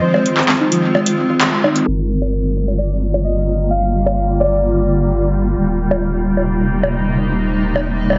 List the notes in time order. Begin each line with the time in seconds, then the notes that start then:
Already playing: D#3 G#3 C4 F4
0.01 F3 C5
0.14 G#3, high bongo
0.26 closed hi-hat
0.37 clap
0.43 shaker
0.49 C4, clap
0.60 D#4
0.72 F3, closed hi-hat
0.95 G#3, high bongo
1.06 closed hi-hat
1.30 F4
1.41 clap, closed hi-hat
1.64 D#4, high bongo
1.76 C4, closed hi-hat
1.86 G1 D3 G3 A#3 F4 A#4
2.22 high bongo
2.68 high bongo
2.78 D5
3.14 high bongo
3.24 D#5
3.71 F5
4.06 high bongo
4.40 D5, high bongo
5.56 D#1 C3 A#3 D#4
5.91 high bongo
6.37 high bongo
6.83 high bongo
7.41 C4
7.76 high bongo
8.10 high bongo
8.13 high bongo